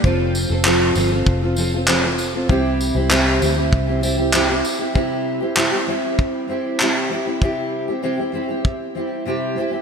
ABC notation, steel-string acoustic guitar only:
X:1
M:4/4
L:1/16
Q:1/4=98
K:C
V:1 name="Steel-string acoustic guitar"
[F,CFA]3 [CFA] [F,CFA]2 [F,CFA] [CFA]2 [CFA] [F,CFA] [CFA] [F,CFA] [CFA]2 [CFA] | [C,G,CEG]3 [CEG] [C,G,CEG]2 [G,CEG] [CEG]2 [CEG] [G,CEG] [CEG] [C,G,CEG] [CEG]2 [CEG] | [C,G,CEG]3 [CEG] [C,G,CEG] [CEG] [G,CEG]4 [G,CEG]2 [C,G,CEG]2 [G,CEG] [CEG] | [C,G,CEG]3 [CEG] [C,G,CEG] [CEG] [G,CEG] [CEG]3 [G,CEG]2 [C,G,CEG]2 [G,CEG] [CEG] |]